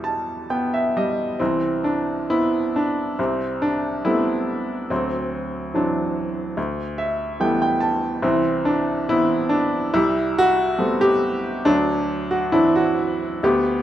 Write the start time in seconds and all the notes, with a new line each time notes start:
Already playing: E2 B2 E3 G3 G4 E5
0.04 A5
0.50 B3 G5
0.74 E5
0.97 G3 D#5
1.39 C2 E3 C4
1.84 D4
2.30 B3 C4 E4
2.76 D4
3.19 C2 G3 C4
3.62 D4
4.05 G3 A3 B3 C4 E4
4.90 D2 F#3 C4
5.74 E3 F#3 C4 D4
6.57 D2
6.98 E5
7.40 E3 G3 A3 B3 G5
7.62 G5
7.80 A5
8.22 C2 E3 C4
8.65 D4
9.09 E3 B3 C4 E4
9.49 D4
9.94 C2 G3 E4
10.38 F#4
10.78 G3 A3 B3 C4
11.01 G4
11.65 D2 F#3 D4
12.31 F#4
12.52 E3 F#3 C4 D4 E4
12.76 F#4
13.43 D2 B3 G4